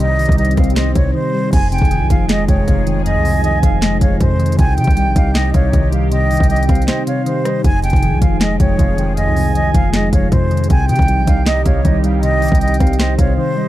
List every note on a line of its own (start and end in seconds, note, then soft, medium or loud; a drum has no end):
0.00 0.26 C2 loud
0.00 0.96 C3 loud
0.00 1.50 C3 medium
0.00 0.19 D#3 medium
0.00 0.39 G3 medium
0.00 1.50 G3 medium
0.00 1.50 D#4 medium
0.00 1.55 D#4 medium
0.00 1.50 G4 loud
0.00 0.19 D#5 loud
0.00 0.36 D#5 loud
0.00 closed hi-hat medium
0.00 swell medium
0.19 1.13 D#3 medium
0.19 closed hi-hat soft
0.19 open hi-hat medium
0.26 0.56 C2 loud
0.26 kick loud
0.26 closed hi-hat medium
0.32 closed hi-hat medium
0.38 1.33 G3 medium
0.38 0.54 D#5 medium
0.38 closed hi-hat medium
0.45 closed hi-hat medium
0.51 closed hi-hat medium
0.57 0.94 C2 loud
0.57 1.53 C4 medium
0.57 0.73 F5 medium
0.57 kick loud
0.57 cross-stick medium
0.57 closed hi-hat medium
0.64 closed hi-hat medium
0.70 closed hi-hat medium
0.76 1.53 C5 loud
0.76 0.92 D#5 medium
0.76 snare loud
0.76 clap medium
0.76 closed hi-hat medium
0.95 1.14 C2 loud
0.95 1.53 C3 medium
0.95 1.11 C#5 medium
0.95 kick medium
0.95 closed hi-hat medium
1.15 1.53 D#3 medium
1.15 1.51 C5 medium
1.34 1.53 G3 medium
1.53 1.80 F1 loud
1.53 2.47 F2 loud
1.53 4.56 F3 medium
1.53 10.66 D#4 medium
1.53 4.56 G#4 loud
1.53 1.68 G#5 loud
1.53 2.45 G#5 loud
1.53 kick loud
1.53 closed hi-hat medium
1.53 crash loud
1.72 2.66 C3 medium
1.72 2.08 G5 medium
1.72 closed hi-hat medium
1.78 2.02 F1 loud
1.78 kick loud
1.78 closed hi-hat medium
1.85 closed hi-hat soft
1.91 2.86 D#3 medium
1.91 closed hi-hat medium
2.01 2.10 C2 loud
2.10 2.47 F1 loud
2.10 3.06 F3 medium
2.10 2.26 F5 medium
2.10 kick loud
2.10 closed hi-hat loud
2.29 3.25 G#3 loud
2.29 2.45 D#5 medium
2.29 snare loud
2.29 clap medium
2.29 closed hi-hat medium
2.48 2.67 F1 loud
2.48 3.04 F2 medium
2.48 3.02 C#5 medium
2.48 2.67 G5 medium
2.48 kick loud
2.48 closed hi-hat medium
2.67 3.17 F1 loud
2.67 3.24 C3 medium
2.67 2.86 F5 medium
2.67 kick medium
2.67 closed hi-hat medium
2.86 3.43 D#3 medium
2.86 3.05 G5 medium
2.86 closed hi-hat medium
3.05 4.00 F2 loud
3.05 3.41 D#5 medium
3.05 3.97 G#5 loud
3.05 closed hi-hat medium
3.15 3.61 C2 loud
3.25 4.19 C3 medium
3.25 open hi-hat medium
3.44 4.38 D#3 medium
3.44 3.59 D#5 loud
3.44 closed hi-hat medium
3.63 4.00 F1 loud
3.63 4.59 F3 medium
3.63 3.78 F5 medium
3.63 kick loud
3.63 closed hi-hat loud
3.82 4.59 G#3 loud
3.82 3.98 D#5 medium
3.82 snare loud
3.82 clap medium
3.82 closed hi-hat medium
4.01 4.20 F1 loud
4.01 4.59 F2 medium
4.01 4.17 C#5 medium
4.01 4.20 F5 medium
4.01 kick loud
4.01 closed hi-hat medium
4.20 4.57 F2 loud
4.20 4.58 C3 medium
4.20 4.57 C5 medium
4.20 kick medium
4.20 closed hi-hat medium
4.39 4.59 D#3 medium
4.39 closed hi-hat soft
4.46 closed hi-hat medium
4.52 closed hi-hat medium
4.59 4.79 C2 loud
4.59 7.61 C3 medium
4.59 5.53 C3 medium
4.59 7.61 G4 medium
4.59 5.50 G5 loud
4.59 4.74 G#5 loud
4.59 kick loud
4.59 closed hi-hat medium
4.78 4.87 C3 loud
4.78 5.72 D#3 medium
4.78 5.14 G5 medium
4.78 closed hi-hat medium
4.84 5.08 C2 loud
4.84 kick medium
4.84 closed hi-hat medium
4.91 closed hi-hat soft
4.97 5.91 G3 medium
4.97 closed hi-hat medium
5.06 5.15 A#1 loud
5.16 5.53 C2 loud
5.16 6.12 D#4 medium
5.16 5.31 F5 medium
5.16 kick loud
5.16 closed hi-hat loud
5.35 5.50 D#5 medium
5.35 6.31 D#5 loud
5.35 snare loud
5.35 clap medium
5.35 closed hi-hat medium
5.54 5.73 C2 loud
5.54 6.11 C3 medium
5.54 5.88 C#5 medium
5.54 5.73 F5 medium
5.54 kick loud
5.54 closed hi-hat medium
5.73 6.38 C2 loud
5.73 6.29 D#3 medium
5.73 5.92 D#5 medium
5.73 kick medium
5.73 closed hi-hat medium
5.92 6.49 G3 medium
5.92 6.11 F5 medium
5.92 closed hi-hat medium
6.11 7.06 C3 loud
6.11 6.47 D#5 loud
6.11 7.03 G5 loud
6.11 closed hi-hat medium
6.30 7.25 D#3 medium
6.30 closed hi-hat soft
6.30 open hi-hat medium
6.37 6.68 C2 loud
6.37 kick medium
6.37 closed hi-hat medium
6.43 closed hi-hat medium
6.50 7.44 G3 medium
6.50 6.65 D#5 medium
6.50 closed hi-hat medium
6.56 closed hi-hat medium
6.63 closed hi-hat medium
6.69 6.87 C2 loud
6.69 7.64 C4 medium
6.69 6.84 F5 medium
6.69 kick loud
6.69 cross-stick medium
6.69 closed hi-hat medium
6.75 closed hi-hat medium
6.82 closed hi-hat medium
6.88 7.64 C5 loud
6.88 7.03 D#5 medium
6.88 snare loud
6.88 clap medium
6.88 closed hi-hat medium
7.07 7.64 C3 medium
7.07 7.22 C#5 medium
7.07 7.43 F5 medium
7.07 closed hi-hat loud
7.26 7.64 D#3 medium
7.26 7.62 C5 medium
7.26 closed hi-hat medium
7.45 7.64 G3 medium
7.45 7.63 D#5 medium
7.45 cross-stick loud
7.45 closed hi-hat medium
7.64 7.92 F1 loud
7.64 8.59 F2 medium
7.64 10.67 F3 medium
7.64 10.67 G#4 medium
7.64 7.80 G#5 loud
7.64 8.56 G#5 medium
7.64 kick loud
7.64 closed hi-hat medium
7.83 8.78 C3 medium
7.83 8.19 G5 medium
7.83 closed hi-hat medium
7.90 8.14 F1 loud
7.90 kick loud
7.90 closed hi-hat medium
7.96 closed hi-hat soft
8.03 8.97 D#3 medium
8.03 closed hi-hat medium
8.12 8.21 C2 loud
8.22 8.58 F1 loud
8.22 9.17 F3 medium
8.22 8.37 F5 medium
8.22 kick loud
8.22 closed hi-hat medium
8.41 9.36 G#3 loud
8.41 8.56 D#5 loud
8.41 snare loud
8.41 clap medium
8.41 closed hi-hat medium
8.60 8.78 F1 loud
8.60 9.16 F2 medium
8.60 9.14 C#5 medium
8.60 8.78 G5 medium
8.60 kick medium
8.60 closed hi-hat medium
8.79 9.28 F1 loud
8.79 9.35 C3 medium
8.79 8.97 F5 medium
8.79 kick medium
8.79 closed hi-hat medium
8.98 9.54 D#3 medium
8.98 9.16 G5 medium
8.98 closed hi-hat medium
9.17 10.12 F2 loud
9.17 9.53 D#5 medium
9.17 10.09 G#5 loud
9.17 closed hi-hat medium
9.27 9.72 C2 loud
9.36 10.31 C3 medium
9.36 open hi-hat medium
9.55 10.50 D#3 medium
9.55 9.70 D#5 loud
9.55 closed hi-hat medium
9.75 10.11 F1 loud
9.75 10.70 F3 medium
9.75 9.90 F5 medium
9.75 kick loud
9.75 closed hi-hat loud
9.94 10.70 G#3 loud
9.94 10.09 D#5 medium
9.94 snare loud
9.94 clap medium
9.94 closed hi-hat medium
10.13 10.31 F1 loud
10.13 10.70 F2 medium
10.13 10.28 C#5 medium
10.13 10.31 F5 medium
10.13 kick loud
10.13 closed hi-hat medium
10.32 10.69 F2 loud
10.32 10.69 C3 medium
10.32 10.68 C5 medium
10.32 kick medium
10.32 closed hi-hat medium
10.51 10.70 D#3 medium
10.51 closed hi-hat soft
10.57 closed hi-hat medium
10.64 closed hi-hat medium
10.70 10.91 C2 loud
10.70 13.68 C3 medium
10.70 11.65 C3 medium
10.70 13.68 G3 medium
10.70 13.68 D#4 medium
10.70 13.68 G4 medium
10.70 11.62 G5 loud
10.70 10.85 G#5 loud
10.70 kick loud
10.70 closed hi-hat medium
10.89 10.98 C3 loud
10.89 11.84 D#3 medium
10.89 11.25 G5 medium
10.89 closed hi-hat medium
10.96 11.19 C2 loud
10.96 kick loud
10.96 closed hi-hat medium
11.02 closed hi-hat soft
11.08 12.03 G3 medium
11.08 closed hi-hat medium
11.18 11.27 A#1 loud
11.27 11.64 C2 loud
11.27 12.23 D#4 medium
11.27 11.43 F5 medium
11.27 kick loud
11.27 closed hi-hat loud
11.46 12.42 D#5 loud
11.46 11.62 D#5 loud
11.46 snare loud
11.46 clap medium
11.46 closed hi-hat medium
11.66 11.84 C2 loud
11.66 12.22 C3 medium
11.66 11.97 C#5 medium
11.66 11.84 F5 medium
11.66 kick loud
11.66 closed hi-hat medium
11.85 12.49 C2 loud
11.85 12.41 D#3 medium
11.85 12.03 D#5 medium
11.85 kick medium
11.85 closed hi-hat medium
12.04 12.60 G3 medium
12.04 12.22 F5 medium
12.04 closed hi-hat medium
12.23 13.17 C3 loud
12.23 12.59 D#5 loud
12.23 13.15 G5 loud
12.23 closed hi-hat medium
12.42 13.37 D#3 medium
12.42 closed hi-hat soft
12.42 open hi-hat medium
12.48 12.79 C2 loud
12.48 kick loud
12.48 closed hi-hat medium
12.55 closed hi-hat medium
12.61 13.56 G3 medium
12.61 12.76 D#5 medium
12.61 closed hi-hat medium
12.68 closed hi-hat medium
12.74 closed hi-hat medium
12.80 13.17 C2 loud
12.80 13.68 C4 medium
12.80 12.96 F5 medium
12.80 kick loud
12.80 cross-stick medium
12.80 closed hi-hat medium
12.87 closed hi-hat medium
12.93 closed hi-hat medium
13.00 13.68 C5 loud
13.00 13.15 D#5 medium
13.00 snare loud
13.00 clap medium
13.00 closed hi-hat medium
13.19 13.38 C2 loud
13.19 13.68 C3 medium
13.19 13.34 C#5 medium
13.19 13.54 F5 medium
13.19 kick loud
13.19 closed hi-hat loud
13.38 13.68 D#3 medium
13.38 13.68 C5 medium
13.57 13.68 G3 medium
13.57 13.68 D#5 medium